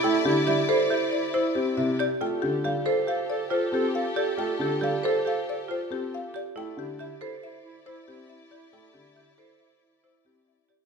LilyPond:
<<
  \new Staff \with { instrumentName = "Marimba" } { \time 5/4 \key f \major \tempo 4 = 138 g''8 g'8 e''8 a'8 e''8 d''8 c''8 g'8 e''8 d''8 | g''8 g'8 f''8 a'8 f''8 d''8 c''8 g'8 f''8 d''8 | g''8 g'8 f''8 a'8 f''8 d''8 c''8 g'8 f''8 d''8 | g''8 g'8 e''8 a'8 e''8 r8 c''8 g'8 e''8 d''8 |
g''8 g'8 e''8 a'8 e''8 r8 c''8 g'8 e''8 d''8 | }
  \new Staff \with { instrumentName = "String section" } { \time 5/4 \key f \major <e' d''>1~ <e' d''>8 r8 | <g' a'>1~ <g' a'>4~ | <g' a'>1~ <g' a'>8 r8 | <e' d''>1~ <e' d''>4~ |
<e' d''>1~ <e' d''>8 r8 | }
  \new Staff \with { instrumentName = "Marimba" } { \time 5/4 \key f \major e'8 r8 g'8 c''8 g'8 r8 e'8 r4 g'8 | f'8 r8 g'8 c''8 g'8 r8 f'8 r4 g'8 | f'8 r8 g'8 c''8 g'8 r8 f'8 r4 g'8 | e'8 r8 g'8 c''8 r4 e'8 r4 g'8 |
e'8 r8 g'8 c''8 r4 e'8 r4 g'8 | }
  \new Staff \with { instrumentName = "Clarinet" } { \time 5/4 \key f \major e'8 e'8 e'8 e'8 e'8 e'8 e'8 e'8 e'8 r8 | a'8 a'8 a'8 a'8 a'8 a'8 a'8 a'8 a'8 a'8 | a'8 a'8 a'8 a'8 a'8 a'8 a'8 a'8 a'8 r8 | e'8 e'8 e'8 e'8 e'8 e'8 e'8 e'8 e'8 e'8 |
e'8 e'8 e'8 e'8 e'8 e'8 e'8 e'8 e'8 r8 | }
  \new Staff \with { instrumentName = "Grand piano" } { \time 5/4 \key f \major a8 d8 g8 r2 c'8 c8 r8 | a8 d8 g8 r2 c'8 r4 | a8 d8 g8 r2 c'8 r4 | a8 d8 r2 r8 c'8 r4 |
a8 d8 r2 r8 c'8 r4 | }
>>